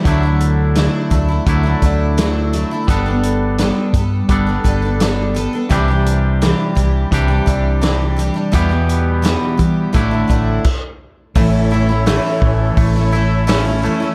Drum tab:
CC |--------|--------|--------|------x-|
HH |xxxxxxxx|xxxxxxxx|xxxxxxxx|xxxxxx--|
SD |--o---o-|--o---o-|--o---o-|--o-----|
BD |o--ooo--|o--ooo--|o--ooo--|o--oooo-|

CC |--------|
HH |o-o-o-o-|
SD |--o---o-|
BD |o--oo---|